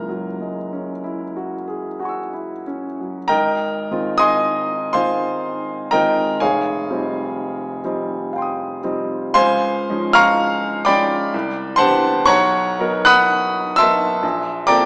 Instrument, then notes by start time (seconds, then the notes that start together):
grand piano
Already playing: F#1 C#2 A#4 A#5
0.09 F#3
0.40 G#3
0.73 C#4
1.04 E4
1.37 F#4
1.68 G#4
1.99 F#4 F#5 G#5
2.05 C#6 E6
2.33 E4
2.67 C#4
3.00 F#3
3.28 G#1 A#4 D#5 G5 A#5
3.91 D#3 G#3 C4 F4
4.18 D#5 G#5 C6 D#6
4.93 D#3 G#3 C4 F4 C5 F5 G#5 C6
5.91 D#3 G#3 C4 F4 A#4 D#5 G5 A#5
6.40 F1 G#4 C#5 F5 G#5
6.90 F3 G3 C4 D#4
7.84 F3 G3 C4 D#4
8.33 F5 G5
8.38 C6 D#6
8.84 F3 G3 C4 D#4
9.34 C#2 C5 F5 G#5 C6
9.89 F3 G#3 C#4 D#4
10.13 F5 A#5 C#6 F6
10.85 F3 G#3 C#4 D#4 D5 G5 B5 D6
11.34 C2
11.76 E3 B3 D4 C5 F#5 A5 C6
11.80 G4
12.26 B1 C#5 F#5 A#5 C#6
12.79 F#3 B3 D#4 A#4
13.05 F#5 B5 D#6 F#6
13.76 F#3 B3 A#4 E5 A5 C6 E6
13.80 D#4
14.23 A#1
14.67 A#3 C4 F4 A4 D5 G5 A#5 D6